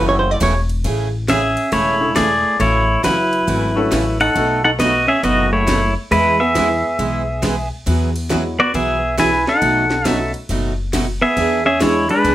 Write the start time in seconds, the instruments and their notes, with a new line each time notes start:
Already playing: upright bass F#1, steel-string acoustic guitar C#3 E3 A3 C#4 F#4, upright piano A3 C#4 E4 F#4 A4
0.09 hollow-body jazz guitar C#5
0.19 hollow-body jazz guitar C5
0.31 hollow-body jazz guitar D5
0.40 upright bass E1, steel-string acoustic guitar C#3 E3 A3 C#4 F#4, hollow-body jazz guitar C#5, kick, hi-hat pedal, ride
0.69 ride
0.84 upright bass A1, steel-string acoustic guitar C#3 E3 A3 C#4 G#4, kick, ride
1.28 steel-string acoustic guitar C#3 E3 A3 C#4 G#4, hollow-body jazz guitar C#4, pedal steel guitar G#4 E5, kick, snare, hi-hat pedal, ride
1.57 ride
1.72 upright bass E1, steel-string acoustic guitar C#3 E3 A3 C#4 G#4, hollow-body jazz guitar A3, pedal steel guitar E4 C#5, kick, ride
2.01 upright piano C#3 A3 E4 G#4
2.16 steel-string acoustic guitar C#3 E3 A3 C#4 G#4, hollow-body jazz guitar A3, pedal steel guitar G#4 D5, kick, snare, hi-hat pedal, ride
2.60 upright bass A1, steel-string acoustic guitar C#3 E3 A3 C#4 F#4, hollow-body jazz guitar A3, pedal steel guitar E4 C#5, kick, ride
3.03 upright bass F#1, steel-string acoustic guitar C#3 E3 A3 C#4 F#4, hollow-body jazz guitar F#3, pedal steel guitar E4 B4, kick, snare, hi-hat pedal, ride
3.33 ride
3.47 upright bass G#1, steel-string acoustic guitar C#3 E3 A3 C#4 F#4, kick, ride
3.76 upright piano A3 C#4 E4 F#4 A4
3.91 upright bass A1, steel-string acoustic guitar C#3 E3 A3 C#4 F#4, kick, snare, hi-hat pedal, ride
4.20 hollow-body jazz guitar D#4, pedal steel guitar A4 F#5, ride
4.34 upright bass B1, steel-string acoustic guitar B2 F#3 A3 D#4 F#4, upright piano A3 B3 D#4 F#4 A4, kick, ride
4.64 hollow-body jazz guitar D#4, pedal steel guitar A4 F#5
4.79 steel-string acoustic guitar B2 F#3 A3 D#4 F#4, hollow-body jazz guitar B3, pedal steel guitar F#4 D#5, kick, snare, hi-hat pedal, ride
5.08 hollow-body jazz guitar C#4, pedal steel guitar G#4 E5
5.23 upright bass F#1, steel-string acoustic guitar B2 F#3 A3 D#4 F#4, hollow-body jazz guitar B3, pedal steel guitar F#4 D#5, kick, ride
5.53 hollow-body jazz guitar A3, pedal steel guitar E4 C#5
5.67 steel-string acoustic guitar B2 F#3 A3 D#4 F#4, kick, snare, hi-hat pedal, ride
6.11 upright bass E2, steel-string acoustic guitar E3 G#3 B3 E4 G#4, hollow-body jazz guitar G#3, pedal steel guitar E4 B4, kick, ride
6.40 hollow-body jazz guitar B3, pedal steel guitar G#4 E5
6.55 upright piano E3 G#3 B3 E4 G#4, steel-string acoustic guitar E3 G#3 B3 E4 G#4, kick, snare, hi-hat pedal, ride
6.99 upright bass B1, steel-string acoustic guitar E3 G#3 B3 E4 G#4, kick, ride
7.42 steel-string acoustic guitar E3 G#3 B3 E4 G#4, kick, snare, hi-hat pedal, ride
7.86 upright bass E2, steel-string acoustic guitar E3 F#3 B3 F#4 G#4, kick, ride
8.16 ride
8.29 steel-string acoustic guitar E3 F#3 B3 F#4 G#4, upright piano F#3 G#3 B3 E4 F#4, kick, snare, hi-hat pedal
8.59 hollow-body jazz guitar B3, pedal steel guitar F#4 D5
8.74 upright bass B1, steel-string acoustic guitar E3 F#3 B3 F#4 G#4, hollow-body jazz guitar B3, pedal steel guitar G#4 E5, kick, ride
9.18 steel-string acoustic guitar E3 F#3 B3 F#4 G#4, hollow-body jazz guitar E4, pedal steel guitar B4 G#5, kick, snare, hi-hat pedal, ride
9.33 snare
9.47 hollow-body jazz guitar D#4, pedal steel guitar A4 F#5, snare
9.61 upright bass B1, steel-string acoustic guitar B2 F#3 A3 D#4 F#4, kick, ride
9.90 snare
10.05 steel-string acoustic guitar B2 F#3 A3 D#4 F#4, upright piano F#3 A3 B3 D#4 F#4, hollow-body jazz guitar C#4, pedal steel guitar E5, kick, snare, hi-hat pedal, ride
10.34 ride
10.49 upright bass F#1, steel-string acoustic guitar B2 F#3 A3 D#4 F#4, kick, ride
10.93 steel-string acoustic guitar B2 F#3 A3 D#4 F#4, kick, snare, hi-hat pedal, ride
11.22 hollow-body jazz guitar B3, pedal steel guitar G#4 E5
11.37 upright bass E2, steel-string acoustic guitar E3 B3 D4 G#4, kick, ride
11.66 hollow-body jazz guitar C#4, pedal steel guitar G#4 E5
11.80 steel-string acoustic guitar E3 B3 D4 G#4, upright piano E3 G#3 B3 D4 E4, hollow-body jazz guitar G#3, pedal steel guitar E4 C#5, kick, snare, hi-hat pedal, ride
12.09 hollow-body jazz guitar G#3, pedal steel guitar D4 B4, ride
12.24 upright bass C#2, steel-string acoustic guitar E3 B3 D4 G#4, kick, ride